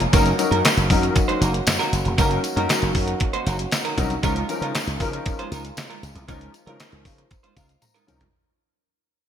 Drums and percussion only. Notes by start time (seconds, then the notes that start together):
0.00 closed hi-hat
0.13 kick, closed hi-hat, tambourine
0.26 closed hi-hat
0.39 closed hi-hat, tambourine
0.52 closed hi-hat
0.65 snare, clap, closed hi-hat, tambourine
0.77 closed hi-hat
0.90 kick, open hi-hat, tambourine
1.03 closed hi-hat
1.16 kick, closed hi-hat, tambourine
1.29 closed hi-hat
1.42 closed hi-hat, tambourine
1.54 closed hi-hat
1.67 snare, clap, closed hi-hat, tambourine
1.80 closed hi-hat
1.93 closed hi-hat, tambourine
2.05 closed hi-hat
2.18 kick, closed hi-hat, tambourine
2.31 closed hi-hat
2.44 closed hi-hat, tambourine
2.57 closed hi-hat
2.69 snare, clap, closed hi-hat, tambourine
2.82 closed hi-hat
2.95 kick, open hi-hat
3.08 closed hi-hat
3.20 kick, closed hi-hat
3.34 closed hi-hat
3.47 closed hi-hat, tambourine
3.59 closed hi-hat
3.72 snare, clap, closed hi-hat, tambourine
3.85 closed hi-hat
3.98 kick, closed hi-hat, tambourine
4.10 closed hi-hat
4.23 kick, closed hi-hat, tambourine
4.36 closed hi-hat
4.49 closed hi-hat, tambourine
4.62 closed hi-hat
4.75 snare, clap, closed hi-hat, tambourine
4.87 closed hi-hat
5.00 kick, open hi-hat, tambourine
5.13 closed hi-hat
5.26 kick, closed hi-hat, tambourine
5.39 closed hi-hat
5.52 closed hi-hat, tambourine
5.65 closed hi-hat
5.77 snare, clap, closed hi-hat, tambourine
5.91 closed hi-hat
6.03 closed hi-hat, tambourine
6.16 closed hi-hat
6.28 kick, closed hi-hat, tambourine
6.41 closed hi-hat
6.54 closed hi-hat, tambourine
6.67 closed hi-hat
6.80 snare, clap, closed hi-hat, tambourine
6.92 closed hi-hat
7.05 kick, open hi-hat, tambourine
7.18 closed hi-hat
7.31 kick, closed hi-hat, tambourine
7.44 closed hi-hat
7.57 kick, closed hi-hat, tambourine
7.69 closed hi-hat
7.82 closed hi-hat, high tom, tambourine
7.96 closed hi-hat
8.08 closed hi-hat, mid tom, tambourine
8.21 closed hi-hat, floor tom